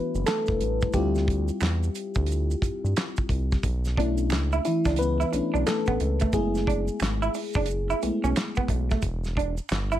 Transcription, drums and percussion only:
0.15 maracas
0.27 finger snap, snare, clap, closed hi-hat, maracas
0.46 kick, maracas
0.61 closed hi-hat
0.81 kick, maracas
0.93 kick, closed hi-hat, maracas
1.15 snare, maracas
1.28 kick, closed hi-hat
1.48 maracas
1.61 finger snap, snare, clap, closed hi-hat, maracas
1.83 maracas
1.95 closed hi-hat, maracas
2.15 kick, maracas
2.26 closed hi-hat
2.32 maracas
2.51 maracas
2.62 kick, closed hi-hat, maracas
2.85 maracas
2.97 finger snap, snare, clap, closed hi-hat, maracas
3.16 kick, maracas
3.29 kick, closed hi-hat
3.52 kick, snare, maracas
3.63 kick, closed hi-hat, maracas
3.85 snare, maracas
3.97 kick, closed hi-hat
4.18 maracas
4.30 finger snap, snare, clap, closed hi-hat, maracas
4.52 maracas
4.65 closed hi-hat, maracas
4.85 kick, snare, closed hi-hat, maracas
4.96 closed hi-hat
5.02 maracas
5.21 maracas
5.33 closed hi-hat, maracas
5.55 maracas
5.67 finger snap, snare, clap, closed hi-hat, maracas
5.86 kick, maracas
6.00 closed hi-hat
6.20 kick, closed hi-hat, maracas
6.33 kick, closed hi-hat, maracas
6.55 snare, maracas
6.67 kick, closed hi-hat
6.88 maracas
7.00 finger snap, snare, clap, closed hi-hat, maracas
7.22 maracas
7.34 open hi-hat, maracas
7.53 kick, maracas
7.66 closed hi-hat
7.70 maracas
7.90 maracas
8.02 closed hi-hat, maracas
8.24 maracas
8.36 finger snap, snare, clap, closed hi-hat, maracas
8.55 kick, maracas
8.68 kick, closed hi-hat
8.91 kick, snare, maracas
9.02 kick, closed hi-hat, maracas
9.24 snare, maracas
9.37 kick, closed hi-hat
9.57 maracas
9.69 finger snap, snare, clap, closed hi-hat, maracas
9.92 maracas

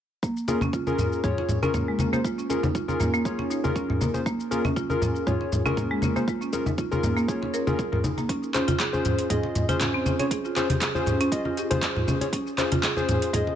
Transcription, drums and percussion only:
0.23 kick, shaker
0.37 shaker
0.48 muted conga, shaker
0.61 high conga, shaker
0.73 kick, shaker
0.87 high conga, shaker
0.98 muted conga, low conga, shaker
1.12 shaker
1.24 kick, low conga, shaker
1.38 muted conga
1.49 low conga, shaker
1.63 high conga, shaker
1.74 kick, muted conga, high conga, low conga, shaker
1.99 high conga, shaker
2.13 muted conga, shaker
2.25 kick, shaker
2.39 shaker
2.50 muted conga, shaker
2.63 high conga, shaker
2.75 kick, shaker
2.88 high conga, shaker
3.00 muted conga, low conga, shaker
3.14 shaker
3.25 kick, shaker
3.39 muted conga
3.51 shaker
3.64 high conga, shaker
3.76 kick, muted conga, shaker
3.90 low conga
4.01 high conga, shaker
4.14 muted conga, shaker
4.26 kick, shaker
4.40 shaker
4.52 muted conga, shaker
4.65 high conga, shaker
4.76 kick, shaker
4.90 high conga, shaker
5.02 muted conga, low conga, shaker
5.16 shaker
5.27 kick, low conga, shaker
5.41 muted conga
5.52 low conga, shaker
5.66 high conga, shaker
5.77 kick, muted conga, high conga, low conga, shaker
6.02 high conga, shaker
6.16 muted conga, shaker
6.28 kick, shaker
6.42 shaker
6.53 kick, muted conga, shaker
6.66 high conga, shaker
6.78 kick, shaker
6.92 high conga, shaker
7.03 muted conga, low conga, shaker
7.17 shaker
7.28 kick, shaker
7.43 muted conga
7.54 shaker
7.67 high conga, shaker
7.79 kick, muted conga, shaker
7.93 low conga
8.04 high conga, shaker
8.18 muted conga, shaker
8.29 kick, closed hi-hat, shaker
8.43 shaker
8.54 clap, closed hi-hat, muted conga, shaker
8.68 closed hi-hat, high conga, shaker
8.80 kick, clap, closed hi-hat, shaker
8.94 high conga, shaker
9.05 closed hi-hat, muted conga, low conga, shaker
9.19 closed hi-hat, shaker
9.30 kick, closed hi-hat, low conga, shaker
9.43 muted conga
9.55 closed hi-hat, low conga, shaker
9.69 closed hi-hat, high conga, shaker
9.79 kick, clap, closed hi-hat, muted conga, high conga, low conga, shaker
10.06 high conga, shaker
10.20 closed hi-hat, muted conga, shaker
10.31 kick, closed hi-hat, shaker
10.45 shaker
10.56 clap, closed hi-hat, muted conga, shaker
10.70 closed hi-hat, high conga, shaker
10.81 kick, clap, closed hi-hat, shaker
10.95 high conga, shaker
11.06 closed hi-hat, muted conga, low conga, shaker
11.21 closed hi-hat, shaker
11.32 kick, closed hi-hat, shaker
11.45 muted conga
11.57 closed hi-hat, shaker
11.71 closed hi-hat, high conga, shaker
11.82 kick, clap, closed hi-hat, muted conga, shaker
11.96 low conga
12.08 high conga, shaker
12.21 closed hi-hat, muted conga, shaker
12.33 kick, closed hi-hat, shaker
12.47 shaker
12.58 clap, closed hi-hat, muted conga, shaker
12.72 closed hi-hat, high conga, shaker
12.83 kick, clap, closed hi-hat, shaker
12.97 high conga, shaker
13.09 closed hi-hat, muted conga, low conga, shaker
13.22 closed hi-hat, shaker
13.33 kick, closed hi-hat, low conga, shaker
13.47 muted conga

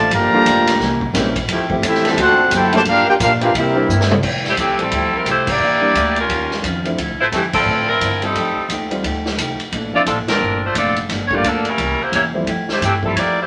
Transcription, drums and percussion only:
0.11 kick, ride
0.46 kick, hi-hat pedal, ride
0.67 snare, ride
0.80 kick, snare
1.01 kick
1.14 kick, snare, hi-hat pedal, ride
1.36 kick, ride
1.48 kick, ride
1.70 kick
1.83 kick, hi-hat pedal, ride
1.94 snare
2.05 snare, ride
2.17 kick, ride
2.51 kick, hi-hat pedal, ride
2.72 ride
2.85 kick, ride
3.20 kick, hi-hat pedal, ride
3.41 ride
3.54 kick, ride
3.90 hi-hat pedal
4.01 snare
4.11 mid tom
4.23 kick, crash
4.44 snare
4.57 kick, hi-hat pedal, ride
4.79 ride
4.91 kick, ride
5.26 kick, hi-hat pedal, ride
5.47 kick, crash
5.95 kick, hi-hat pedal, ride
6.16 ride
6.29 kick, ride
6.51 snare
6.63 kick, hi-hat pedal, ride
6.85 ride
6.98 kick, ride
7.32 kick, snare, hi-hat pedal, ride
7.53 kick, crash
8.01 kick, hi-hat pedal, ride
8.22 ride
8.35 kick, ride
8.69 kick, hi-hat pedal, ride
8.91 ride
9.04 kick, ride
9.26 snare
9.38 kick, hi-hat pedal, ride
9.60 ride
9.72 kick, ride
10.06 kick, hi-hat pedal, ride
10.28 snare, ride
10.75 kick, hi-hat pedal, ride
10.96 ride
11.09 kick, snare, ride
11.31 kick
11.44 kick, hi-hat pedal, ride
11.65 ride
11.78 kick, ride
12.12 kick, hi-hat pedal, ride
12.47 kick, ride
12.69 snare
12.81 kick, hi-hat pedal, ride
13.03 kick
13.16 kick, ride

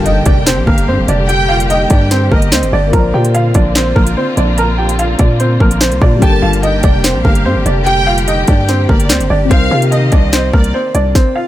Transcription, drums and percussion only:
0.06 closed hi-hat
0.26 kick, closed hi-hat
0.47 snare, clap, closed hi-hat
0.67 kick
0.78 closed hi-hat
1.08 closed hi-hat
1.29 closed hi-hat
1.60 closed hi-hat
1.70 closed hi-hat
1.90 kick, closed hi-hat
2.11 snare, closed hi-hat
2.32 kick
2.42 closed hi-hat
2.52 snare, clap, closed hi-hat
2.63 closed hi-hat
2.93 kick, closed hi-hat
3.25 closed hi-hat
3.35 closed hi-hat
3.54 kick, closed hi-hat
3.75 snare, clap, closed hi-hat
3.96 kick
4.07 closed hi-hat
4.37 closed hi-hat
4.58 closed hi-hat
4.89 closed hi-hat
4.99 closed hi-hat
5.19 kick, closed hi-hat
5.40 closed hi-hat
5.60 kick
5.71 closed hi-hat
5.81 snare, clap, closed hi-hat
5.92 closed hi-hat
6.02 kick
6.22 kick, closed hi-hat
6.53 closed hi-hat
6.63 closed hi-hat
6.83 kick, closed hi-hat
7.04 snare, clap, closed hi-hat
7.25 kick
7.35 closed hi-hat
7.66 closed hi-hat
7.86 closed hi-hat
8.18 closed hi-hat
8.28 closed hi-hat
8.48 kick, closed hi-hat
8.69 snare, closed hi-hat
8.89 kick
9.00 closed hi-hat
9.10 snare, clap, closed hi-hat
9.20 closed hi-hat
9.51 kick, closed hi-hat
9.82 closed hi-hat
9.92 closed hi-hat
10.12 kick, closed hi-hat
10.33 snare, clap, closed hi-hat
10.53 kick
10.64 closed hi-hat
10.95 closed hi-hat
11.15 kick, snare

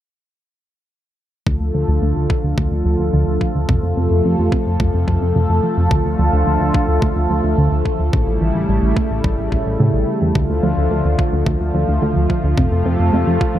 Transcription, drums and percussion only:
1.47 kick
2.30 kick
2.58 kick
3.41 kick
3.69 kick
4.52 kick
4.80 kick
5.08 kick
5.91 kick
6.74 kick
7.02 kick
7.85 kick
8.13 kick
8.97 kick
9.24 kick
9.52 kick
10.35 kick
11.19 kick
11.46 kick
12.30 kick
12.58 kick
13.41 kick

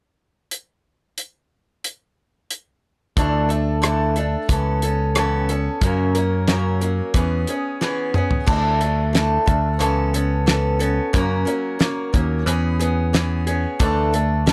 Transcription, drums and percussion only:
0.51 closed hi-hat
1.18 closed hi-hat
1.84 closed hi-hat
2.51 closed hi-hat
3.17 kick, closed hi-hat
3.50 closed hi-hat
3.83 cross-stick, closed hi-hat
4.16 closed hi-hat
4.49 kick, closed hi-hat
4.82 closed hi-hat
5.15 cross-stick, closed hi-hat
5.49 closed hi-hat
5.81 kick, closed hi-hat
6.15 closed hi-hat
6.48 snare, closed hi-hat
6.82 closed hi-hat
7.14 kick, closed hi-hat
7.47 closed hi-hat
7.81 snare
8.14 mid tom
8.31 floor tom
8.48 kick, crash
8.81 closed hi-hat
9.15 snare, closed hi-hat
9.47 kick, closed hi-hat
9.80 closed hi-hat
10.14 closed hi-hat
10.47 snare, closed hi-hat
10.80 closed hi-hat
11.14 kick, closed hi-hat
11.47 closed hi-hat
11.80 snare, closed hi-hat
12.14 kick, closed hi-hat
12.47 closed hi-hat
12.81 closed hi-hat
13.14 snare, closed hi-hat
13.47 closed hi-hat
13.80 kick, closed hi-hat
14.14 closed hi-hat
14.47 snare, closed hi-hat

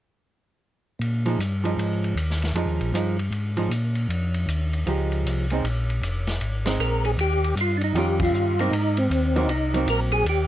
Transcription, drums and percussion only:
1.01 ride
1.26 ride
1.40 hi-hat pedal, ride
1.65 ride
1.79 ride
2.04 ride
2.17 hi-hat pedal, ride
2.30 snare
2.42 snare, ride
2.55 ride
2.81 ride
2.95 hi-hat pedal, ride
3.19 ride
3.32 ride
3.57 ride
3.71 hi-hat pedal, ride
3.95 ride
4.10 ride
4.34 ride
4.48 hi-hat pedal, ride
4.73 ride
4.87 ride
5.12 ride
5.27 hi-hat pedal, ride
5.50 ride
5.65 ride
5.90 ride
6.03 hi-hat pedal, ride
6.27 snare, ride
6.41 ride
6.66 snare, ride
6.80 hi-hat pedal, ride
7.05 ride
7.19 ride
7.44 ride
7.57 hi-hat pedal, ride
7.81 ride
7.95 ride
8.20 kick, ride
8.34 hi-hat pedal
8.59 ride
8.73 ride
8.97 ride
9.11 hi-hat pedal, ride
9.36 ride
9.49 ride
9.74 ride
9.87 hi-hat pedal, ride
10.11 ride
10.26 ride

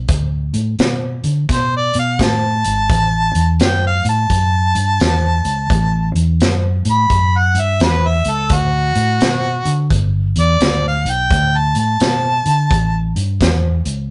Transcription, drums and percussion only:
0.08 kick, closed hi-hat
0.54 closed hi-hat
0.79 snare, closed hi-hat
1.24 closed hi-hat
1.49 kick, snare, closed hi-hat
1.94 closed hi-hat
2.19 kick, snare, closed hi-hat
2.64 closed hi-hat
2.90 kick, closed hi-hat
3.35 closed hi-hat
3.60 snare, closed hi-hat
4.05 closed hi-hat
4.30 kick, closed hi-hat
4.75 closed hi-hat
5.00 snare, closed hi-hat
5.45 closed hi-hat
5.70 kick, closed hi-hat
6.16 closed hi-hat
6.40 snare, closed hi-hat
6.85 closed hi-hat
7.10 kick, closed hi-hat
7.55 closed hi-hat
7.80 snare, closed hi-hat
8.25 closed hi-hat
8.50 kick, closed hi-hat
8.95 closed hi-hat
9.21 snare, closed hi-hat
9.65 closed hi-hat
9.90 kick, closed hi-hat
10.36 closed hi-hat
10.61 snare, closed hi-hat
11.06 closed hi-hat
11.31 kick, closed hi-hat
11.75 closed hi-hat
12.00 snare, closed hi-hat
12.46 closed hi-hat
12.71 kick, closed hi-hat
13.16 closed hi-hat
13.41 kick, snare, closed hi-hat
13.85 closed hi-hat

